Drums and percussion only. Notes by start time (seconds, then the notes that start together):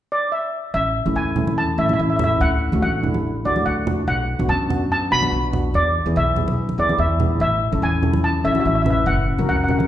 1.06 high conga
1.36 low conga
1.47 high conga
1.89 high conga
2.19 low conga
2.72 high conga
3.03 low conga
3.14 high conga
3.56 high conga
3.87 low conga
4.40 high conga
4.70 low conga
5.23 high conga
5.53 low conga
6.36 low conga
6.48 high conga
6.69 high conga
6.89 high conga
7.20 low conga
7.73 high conga
8.03 low conga
8.13 high conga
8.55 high conga
8.86 low conga
9.38 high conga
9.68 low conga
9.80 high conga